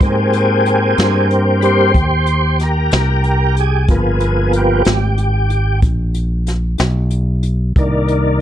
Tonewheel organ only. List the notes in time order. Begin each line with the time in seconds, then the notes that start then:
0.02 A#3 C4 G4 G#4
1.61 G3 A#3 C4 B4
1.65 C5
2.63 A#4
3.60 G#4
3.90 F3 A#3 B3
4.57 G4
7.78 D#3 A#3 D4